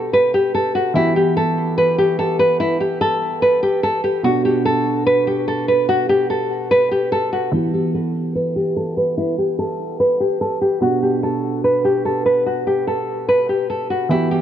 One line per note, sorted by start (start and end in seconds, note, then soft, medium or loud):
0.00 0.91 B2 medium
0.00 0.91 B3 medium
0.00 0.92 D4 medium
0.00 0.92 F#4 medium
0.00 0.11 A4 medium
0.13 0.30 B4 medium
0.34 0.51 G4 medium
0.55 0.72 A4 medium
0.75 0.92 F#4 medium
0.94 4.20 E3 medium
0.94 4.20 B3 medium
0.94 1.13 E4 loud
0.94 4.21 F#4 medium
0.94 4.21 G4 medium
1.16 1.33 G4 medium
1.37 1.75 A4 medium
1.78 1.95 B4 medium
1.98 2.15 G4 medium
2.19 2.36 A4 medium
2.39 2.56 B4 medium
2.60 2.77 E4 loud
2.80 2.98 G4 medium
3.01 3.40 A4 loud
3.42 3.59 B4 medium
3.63 3.80 G4 medium
3.83 4.00 A4 medium
4.04 4.21 G4 medium
4.23 7.48 B2 medium
4.23 7.49 B3 medium
4.23 7.49 D4 medium
4.23 4.41 F#4 loud
4.23 7.50 F#4 medium
4.45 4.62 G4 medium
4.65 5.04 A4 medium
5.07 5.24 B4 medium
5.27 5.44 G4 medium
5.48 5.65 A4 loud
5.68 5.85 B4 medium
5.89 6.06 F#4 loud
6.09 6.26 G4 medium
6.30 6.68 A4 medium
6.71 6.88 B4 medium
6.91 7.09 G4 medium
7.12 7.29 A4 medium
7.33 7.50 F#4 medium
7.52 10.77 E3 medium
7.52 10.78 B3 medium
7.52 7.70 E4 loud
7.52 10.78 F#4 medium
7.52 10.79 G4 medium
7.74 7.91 G4 medium
7.94 8.33 A4 medium
8.35 8.52 B4 medium
8.56 8.73 G4 medium
8.77 8.94 A4 medium
8.97 9.14 B4 medium
9.18 9.35 E4 loud
9.38 9.55 G4 medium
9.59 9.97 A4 medium
10.00 10.17 B4 medium
10.20 10.37 G4 medium
10.41 10.58 A4 medium
10.61 10.78 G4 medium
10.81 14.06 B2 medium
10.81 14.07 B3 medium
10.81 14.07 D4 medium
10.81 10.99 F#4 loud
10.81 14.08 F#4 medium
11.03 11.20 G4 medium
11.23 11.62 A4 medium
11.64 11.81 B4 medium
11.85 12.02 G4 medium
12.05 12.22 A4 medium
12.26 12.43 B4 medium
12.46 12.63 F#4 loud
12.67 12.84 G4 medium
12.87 13.26 A4 medium
13.29 13.46 B4 medium
13.49 13.66 G4 medium
13.70 13.87 A4 medium
13.90 14.07 F#4 medium
14.09 14.41 E3 medium
14.09 14.41 B3 medium
14.09 14.28 E4 loud
14.09 14.41 F#4 medium
14.09 14.41 G4 medium
14.31 14.41 G4 medium